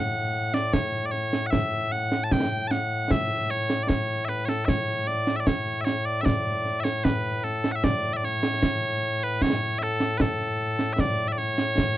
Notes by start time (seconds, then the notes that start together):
Already playing: A2 F#5
0.54 D5, snare
0.73 C#5, concert bass drum, snare
1.06 D5
1.11 C#5, snare
1.33 snare
1.46 F#5
1.51 E5, concert bass drum, snare
1.92 F#5, snare
2.12 snare
2.24 A5
2.31 G5, concert bass drum, snare
2.68 F#5 A5, snare
3.11 E5, concert bass drum, snare
3.50 C#5
3.70 snare
3.83 D5
3.89 C#5, concert bass drum, snare
4.25 B4 E5, snare
4.45 A4 C#5, snare
4.65 C#5 E5, concert bass drum, snare
5.07 D5, snare
5.27 snare
5.36 D5 E5
5.47 C#5, concert bass drum, snare
5.81 C#5 E5
5.87 snare
6.06 D5
6.21 E5
6.25 D5, concert bass drum, snare
6.65 snare
6.80 C#5 E5
6.85 snare
7.04 B4, concert bass drum, snare
7.44 A4, snare
7.64 snare
7.72 E5 F#5
7.84 D5, concert bass drum, snare
8.13 D5 E5
8.24 C#5, snare
8.43 snare
8.63 concert bass drum, snare
9.23 B4
9.42 C#5, concert bass drum, snare
9.79 E5, snare
9.83 A4
10.00 snare
10.18 A4 B4, concert bass drum, snare
10.40 snare
10.79 snare
10.93 E5
10.99 D5, concert bass drum, snare
11.28 E5
11.32 D5
11.38 C#5, snare
11.58 snare
11.78 concert bass drum, snare